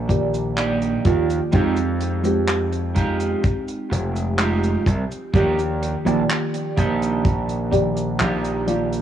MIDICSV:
0, 0, Header, 1, 6, 480
1, 0, Start_track
1, 0, Tempo, 952381
1, 772, Time_signature, 4, 2, 24, 8
1, 4545, End_track
2, 0, Start_track
2, 0, Title_t, "Clean electric guitar"
2, 0, Program_c, 0, 27
2, 287, Note_on_c, 0, 58, 89
2, 288, Note_on_c, 0, 62, 77
2, 291, Note_on_c, 0, 63, 80
2, 291, Note_on_c, 0, 74, 69
2, 295, Note_on_c, 0, 67, 83
2, 529, Note_off_c, 0, 58, 0
2, 531, Note_off_c, 0, 62, 0
2, 532, Note_off_c, 0, 63, 0
2, 532, Note_off_c, 0, 67, 0
2, 751, Note_off_c, 0, 74, 0
2, 766, Note_on_c, 0, 56, 119
2, 768, Note_on_c, 0, 63, 108
2, 771, Note_on_c, 0, 65, 106
2, 773, Note_on_c, 0, 67, 127
2, 891, Note_off_c, 0, 56, 0
2, 892, Note_off_c, 0, 63, 0
2, 893, Note_off_c, 0, 65, 0
2, 894, Note_off_c, 0, 67, 0
2, 1485, Note_on_c, 0, 56, 92
2, 1487, Note_on_c, 0, 63, 81
2, 1489, Note_on_c, 0, 65, 86
2, 1492, Note_on_c, 0, 67, 102
2, 1728, Note_off_c, 0, 56, 0
2, 1729, Note_off_c, 0, 63, 0
2, 1730, Note_off_c, 0, 65, 0
2, 1732, Note_off_c, 0, 67, 0
2, 2207, Note_on_c, 0, 56, 87
2, 2209, Note_on_c, 0, 63, 87
2, 2212, Note_on_c, 0, 65, 76
2, 2215, Note_on_c, 0, 67, 93
2, 2449, Note_off_c, 0, 56, 0
2, 2451, Note_off_c, 0, 63, 0
2, 2452, Note_off_c, 0, 65, 0
2, 2453, Note_off_c, 0, 67, 0
2, 2689, Note_on_c, 0, 58, 120
2, 2690, Note_on_c, 0, 62, 102
2, 2694, Note_on_c, 0, 63, 94
2, 2695, Note_on_c, 0, 67, 127
2, 2812, Note_off_c, 0, 58, 0
2, 2813, Note_off_c, 0, 62, 0
2, 2814, Note_off_c, 0, 63, 0
2, 2815, Note_off_c, 0, 67, 0
2, 3409, Note_on_c, 0, 58, 92
2, 3413, Note_on_c, 0, 62, 70
2, 3413, Note_on_c, 0, 63, 84
2, 3416, Note_on_c, 0, 67, 103
2, 3651, Note_off_c, 0, 58, 0
2, 3652, Note_off_c, 0, 62, 0
2, 3653, Note_off_c, 0, 63, 0
2, 3654, Note_off_c, 0, 67, 0
2, 4128, Note_on_c, 0, 58, 94
2, 4131, Note_on_c, 0, 62, 82
2, 4133, Note_on_c, 0, 63, 76
2, 4135, Note_on_c, 0, 67, 99
2, 4370, Note_off_c, 0, 58, 0
2, 4371, Note_off_c, 0, 62, 0
2, 4372, Note_off_c, 0, 63, 0
2, 4374, Note_off_c, 0, 67, 0
2, 4545, End_track
3, 0, Start_track
3, 0, Title_t, "FM electric piano"
3, 0, Program_c, 1, 5
3, 0, Control_c, 1, 64, 127
3, 0, Note_on_c, 1, 51, 80
3, 0, Note_on_c, 1, 53, 89
3, 0, Note_on_c, 1, 58, 74
3, 0, Note_on_c, 1, 67, 99
3, 0, Note_on_c, 1, 74, 79
3, 44, Note_off_c, 1, 53, 0
3, 44, Note_on_c, 1, 53, 72
3, 47, Note_off_c, 1, 58, 0
3, 47, Note_on_c, 1, 58, 68
3, 49, Note_off_c, 1, 74, 0
3, 49, Note_on_c, 1, 74, 67
3, 51, Note_off_c, 1, 51, 0
3, 51, Note_on_c, 1, 51, 68
3, 52, Note_off_c, 1, 67, 0
3, 52, Note_on_c, 1, 67, 81
3, 500, Note_off_c, 1, 53, 0
3, 501, Note_off_c, 1, 58, 0
3, 502, Note_off_c, 1, 74, 0
3, 503, Note_off_c, 1, 51, 0
3, 504, Note_off_c, 1, 67, 0
3, 527, Note_on_c, 1, 53, 78
3, 528, Note_on_c, 1, 58, 73
3, 531, Note_on_c, 1, 74, 74
3, 534, Note_on_c, 1, 51, 77
3, 534, Note_on_c, 1, 65, 84
3, 741, Note_off_c, 1, 53, 0
3, 742, Note_off_c, 1, 58, 0
3, 743, Note_off_c, 1, 74, 0
3, 744, Note_off_c, 1, 51, 0
3, 745, Note_off_c, 1, 65, 0
3, 764, Note_on_c, 1, 53, 91
3, 768, Note_on_c, 1, 56, 80
3, 769, Note_on_c, 1, 60, 89
3, 770, Note_on_c, 1, 63, 90
3, 774, Note_on_c, 1, 67, 106
3, 779, Control_c, 1, 64, 0
3, 880, Control_c, 1, 64, 127
3, 1101, Note_off_c, 1, 53, 0
3, 1103, Note_off_c, 1, 56, 0
3, 1103, Note_off_c, 1, 60, 0
3, 1103, Note_off_c, 1, 63, 0
3, 1106, Note_off_c, 1, 67, 0
3, 1123, Note_on_c, 1, 53, 89
3, 1126, Note_on_c, 1, 56, 83
3, 1130, Note_on_c, 1, 60, 77
3, 1135, Note_on_c, 1, 63, 78
3, 1138, Note_on_c, 1, 67, 95
3, 2658, Note_off_c, 1, 53, 0
3, 2660, Note_off_c, 1, 56, 0
3, 2662, Note_off_c, 1, 60, 0
3, 2664, Note_off_c, 1, 63, 0
3, 2665, Note_off_c, 1, 67, 0
3, 2689, Note_on_c, 1, 53, 70
3, 2690, Note_on_c, 1, 58, 65
3, 2691, Note_on_c, 1, 74, 64
3, 2694, Note_on_c, 1, 51, 65
3, 2696, Note_on_c, 1, 67, 82
3, 2698, Control_c, 1, 64, 0
3, 2776, Control_c, 1, 64, 127
3, 3023, Note_off_c, 1, 53, 0
3, 3024, Note_off_c, 1, 58, 0
3, 3024, Note_off_c, 1, 74, 0
3, 3026, Note_off_c, 1, 51, 0
3, 3027, Note_off_c, 1, 67, 0
3, 3046, Note_on_c, 1, 53, 85
3, 3050, Note_on_c, 1, 58, 79
3, 3054, Note_on_c, 1, 74, 81
3, 3058, Note_on_c, 1, 51, 80
3, 3061, Note_on_c, 1, 67, 94
3, 3864, Note_off_c, 1, 53, 0
3, 3866, Note_off_c, 1, 58, 0
3, 3868, Note_off_c, 1, 74, 0
3, 3870, Note_off_c, 1, 51, 0
3, 3872, Note_off_c, 1, 67, 0
3, 3887, Note_on_c, 1, 53, 76
3, 3889, Note_on_c, 1, 58, 70
3, 3890, Note_on_c, 1, 74, 68
3, 3893, Note_on_c, 1, 51, 67
3, 3895, Note_on_c, 1, 67, 83
3, 4341, Note_off_c, 1, 53, 0
3, 4342, Note_off_c, 1, 58, 0
3, 4342, Note_off_c, 1, 74, 0
3, 4344, Note_off_c, 1, 51, 0
3, 4345, Note_off_c, 1, 67, 0
3, 4370, Note_on_c, 1, 53, 77
3, 4371, Note_on_c, 1, 58, 73
3, 4372, Note_on_c, 1, 74, 71
3, 4375, Note_on_c, 1, 51, 76
3, 4379, Note_on_c, 1, 65, 84
3, 4545, Note_off_c, 1, 51, 0
3, 4545, Note_off_c, 1, 53, 0
3, 4545, Note_off_c, 1, 58, 0
3, 4545, Note_off_c, 1, 65, 0
3, 4545, Note_off_c, 1, 74, 0
3, 4545, End_track
4, 0, Start_track
4, 0, Title_t, "Slap bass"
4, 0, Program_c, 2, 36
4, 0, Note_on_c, 2, 34, 89
4, 477, Note_off_c, 2, 34, 0
4, 530, Note_on_c, 2, 39, 100
4, 702, Note_off_c, 2, 39, 0
4, 774, Note_on_c, 2, 41, 100
4, 1678, Note_off_c, 2, 41, 0
4, 1973, Note_on_c, 2, 29, 86
4, 2397, Note_off_c, 2, 29, 0
4, 2452, Note_on_c, 2, 36, 108
4, 2538, Note_off_c, 2, 36, 0
4, 2690, Note_on_c, 2, 39, 101
4, 2996, Note_off_c, 2, 39, 0
4, 3053, Note_on_c, 2, 34, 97
4, 3137, Note_off_c, 2, 34, 0
4, 3414, Note_on_c, 2, 34, 86
4, 4130, Note_off_c, 2, 34, 0
4, 4133, Note_on_c, 2, 34, 93
4, 4545, Note_off_c, 2, 34, 0
4, 4545, End_track
5, 0, Start_track
5, 0, Title_t, "Muted clean electric guitar strokes"
5, 45, Note_on_c, 9, 29, 121
5, 96, Note_off_c, 9, 29, 0
5, 168, Note_on_c, 9, 29, 34
5, 218, Note_off_c, 9, 29, 0
5, 1006, Note_on_c, 9, 29, 35
5, 1057, Note_off_c, 9, 29, 0
5, 1128, Note_on_c, 9, 29, 90
5, 1178, Note_off_c, 9, 29, 0
5, 1245, Note_on_c, 9, 29, 33
5, 1296, Note_off_c, 9, 29, 0
5, 1369, Note_on_c, 9, 29, 37
5, 1419, Note_off_c, 9, 29, 0
5, 1965, Note_on_c, 9, 29, 120
5, 2016, Note_off_c, 9, 29, 0
5, 2091, Note_on_c, 9, 29, 35
5, 2141, Note_off_c, 9, 29, 0
5, 2928, Note_on_c, 9, 29, 34
5, 2979, Note_off_c, 9, 29, 0
5, 3049, Note_on_c, 9, 29, 92
5, 3100, Note_off_c, 9, 29, 0
5, 3292, Note_on_c, 9, 29, 35
5, 3343, Note_off_c, 9, 29, 0
5, 3888, Note_on_c, 9, 29, 121
5, 3939, Note_off_c, 9, 29, 0
5, 4010, Note_on_c, 9, 29, 34
5, 4060, Note_off_c, 9, 29, 0
5, 4545, End_track
6, 0, Start_track
6, 0, Title_t, "Drums"
6, 47, Note_on_c, 9, 36, 59
6, 49, Note_on_c, 9, 42, 98
6, 97, Note_off_c, 9, 36, 0
6, 100, Note_off_c, 9, 42, 0
6, 173, Note_on_c, 9, 42, 51
6, 173, Note_on_c, 9, 69, 64
6, 223, Note_off_c, 9, 42, 0
6, 223, Note_off_c, 9, 69, 0
6, 290, Note_on_c, 9, 39, 104
6, 292, Note_on_c, 9, 69, 57
6, 293, Note_on_c, 9, 42, 79
6, 340, Note_off_c, 9, 39, 0
6, 343, Note_off_c, 9, 69, 0
6, 344, Note_off_c, 9, 42, 0
6, 412, Note_on_c, 9, 42, 51
6, 414, Note_on_c, 9, 69, 42
6, 462, Note_off_c, 9, 42, 0
6, 464, Note_off_c, 9, 69, 0
6, 529, Note_on_c, 9, 42, 99
6, 530, Note_on_c, 9, 36, 100
6, 579, Note_off_c, 9, 42, 0
6, 580, Note_off_c, 9, 36, 0
6, 655, Note_on_c, 9, 42, 61
6, 655, Note_on_c, 9, 69, 70
6, 706, Note_off_c, 9, 42, 0
6, 706, Note_off_c, 9, 69, 0
6, 768, Note_on_c, 9, 69, 70
6, 769, Note_on_c, 9, 42, 85
6, 773, Note_on_c, 9, 36, 106
6, 819, Note_off_c, 9, 69, 0
6, 820, Note_off_c, 9, 42, 0
6, 824, Note_off_c, 9, 36, 0
6, 888, Note_on_c, 9, 69, 47
6, 890, Note_on_c, 9, 42, 57
6, 938, Note_off_c, 9, 69, 0
6, 941, Note_off_c, 9, 42, 0
6, 1010, Note_on_c, 9, 42, 90
6, 1061, Note_off_c, 9, 42, 0
6, 1130, Note_on_c, 9, 69, 66
6, 1132, Note_on_c, 9, 42, 62
6, 1180, Note_off_c, 9, 69, 0
6, 1183, Note_off_c, 9, 42, 0
6, 1249, Note_on_c, 9, 42, 77
6, 1250, Note_on_c, 9, 39, 120
6, 1252, Note_on_c, 9, 69, 67
6, 1299, Note_off_c, 9, 42, 0
6, 1300, Note_off_c, 9, 39, 0
6, 1302, Note_off_c, 9, 69, 0
6, 1373, Note_on_c, 9, 42, 56
6, 1375, Note_on_c, 9, 69, 48
6, 1423, Note_off_c, 9, 42, 0
6, 1425, Note_off_c, 9, 69, 0
6, 1491, Note_on_c, 9, 42, 95
6, 1494, Note_on_c, 9, 36, 61
6, 1541, Note_off_c, 9, 42, 0
6, 1544, Note_off_c, 9, 36, 0
6, 1613, Note_on_c, 9, 42, 55
6, 1614, Note_on_c, 9, 69, 67
6, 1663, Note_off_c, 9, 42, 0
6, 1665, Note_off_c, 9, 69, 0
6, 1732, Note_on_c, 9, 42, 81
6, 1733, Note_on_c, 9, 69, 63
6, 1734, Note_on_c, 9, 36, 107
6, 1783, Note_off_c, 9, 42, 0
6, 1784, Note_off_c, 9, 36, 0
6, 1784, Note_off_c, 9, 69, 0
6, 1855, Note_on_c, 9, 69, 49
6, 1856, Note_on_c, 9, 42, 56
6, 1905, Note_off_c, 9, 69, 0
6, 1906, Note_off_c, 9, 42, 0
6, 1979, Note_on_c, 9, 42, 103
6, 2029, Note_off_c, 9, 42, 0
6, 2096, Note_on_c, 9, 69, 63
6, 2098, Note_on_c, 9, 42, 51
6, 2147, Note_off_c, 9, 69, 0
6, 2148, Note_off_c, 9, 42, 0
6, 2211, Note_on_c, 9, 39, 112
6, 2213, Note_on_c, 9, 42, 81
6, 2216, Note_on_c, 9, 69, 58
6, 2261, Note_off_c, 9, 39, 0
6, 2264, Note_off_c, 9, 42, 0
6, 2266, Note_off_c, 9, 69, 0
6, 2336, Note_on_c, 9, 42, 53
6, 2336, Note_on_c, 9, 69, 46
6, 2387, Note_off_c, 9, 42, 0
6, 2387, Note_off_c, 9, 69, 0
6, 2451, Note_on_c, 9, 36, 89
6, 2454, Note_on_c, 9, 42, 111
6, 2502, Note_off_c, 9, 36, 0
6, 2504, Note_off_c, 9, 42, 0
6, 2578, Note_on_c, 9, 69, 70
6, 2580, Note_on_c, 9, 42, 51
6, 2628, Note_off_c, 9, 69, 0
6, 2630, Note_off_c, 9, 42, 0
6, 2690, Note_on_c, 9, 36, 113
6, 2695, Note_on_c, 9, 69, 70
6, 2696, Note_on_c, 9, 42, 81
6, 2740, Note_off_c, 9, 36, 0
6, 2746, Note_off_c, 9, 42, 0
6, 2746, Note_off_c, 9, 69, 0
6, 2817, Note_on_c, 9, 42, 57
6, 2817, Note_on_c, 9, 69, 54
6, 2867, Note_off_c, 9, 69, 0
6, 2868, Note_off_c, 9, 42, 0
6, 2936, Note_on_c, 9, 42, 99
6, 2987, Note_off_c, 9, 42, 0
6, 3057, Note_on_c, 9, 42, 53
6, 3059, Note_on_c, 9, 69, 67
6, 3107, Note_off_c, 9, 42, 0
6, 3110, Note_off_c, 9, 69, 0
6, 3176, Note_on_c, 9, 39, 121
6, 3176, Note_on_c, 9, 42, 73
6, 3178, Note_on_c, 9, 69, 68
6, 3226, Note_off_c, 9, 39, 0
6, 3226, Note_off_c, 9, 42, 0
6, 3228, Note_off_c, 9, 69, 0
6, 3296, Note_on_c, 9, 42, 65
6, 3300, Note_on_c, 9, 69, 49
6, 3347, Note_off_c, 9, 42, 0
6, 3351, Note_off_c, 9, 69, 0
6, 3414, Note_on_c, 9, 42, 90
6, 3415, Note_on_c, 9, 36, 63
6, 3465, Note_off_c, 9, 36, 0
6, 3465, Note_off_c, 9, 42, 0
6, 3539, Note_on_c, 9, 42, 54
6, 3542, Note_on_c, 9, 69, 75
6, 3590, Note_off_c, 9, 42, 0
6, 3592, Note_off_c, 9, 69, 0
6, 3654, Note_on_c, 9, 36, 123
6, 3655, Note_on_c, 9, 42, 76
6, 3655, Note_on_c, 9, 69, 56
6, 3704, Note_off_c, 9, 36, 0
6, 3705, Note_off_c, 9, 42, 0
6, 3705, Note_off_c, 9, 69, 0
6, 3776, Note_on_c, 9, 42, 57
6, 3776, Note_on_c, 9, 69, 43
6, 3826, Note_off_c, 9, 42, 0
6, 3826, Note_off_c, 9, 69, 0
6, 3894, Note_on_c, 9, 36, 55
6, 3895, Note_on_c, 9, 42, 93
6, 3944, Note_off_c, 9, 36, 0
6, 3945, Note_off_c, 9, 42, 0
6, 4015, Note_on_c, 9, 42, 51
6, 4018, Note_on_c, 9, 69, 77
6, 4066, Note_off_c, 9, 42, 0
6, 4069, Note_off_c, 9, 69, 0
6, 4132, Note_on_c, 9, 39, 105
6, 4132, Note_on_c, 9, 42, 81
6, 4136, Note_on_c, 9, 69, 58
6, 4182, Note_off_c, 9, 42, 0
6, 4183, Note_off_c, 9, 39, 0
6, 4186, Note_off_c, 9, 69, 0
6, 4257, Note_on_c, 9, 42, 60
6, 4258, Note_on_c, 9, 69, 47
6, 4307, Note_off_c, 9, 42, 0
6, 4308, Note_off_c, 9, 69, 0
6, 4374, Note_on_c, 9, 42, 98
6, 4425, Note_off_c, 9, 42, 0
6, 4499, Note_on_c, 9, 42, 61
6, 4503, Note_on_c, 9, 69, 69
6, 4545, Note_off_c, 9, 42, 0
6, 4545, Note_off_c, 9, 69, 0
6, 4545, End_track
0, 0, End_of_file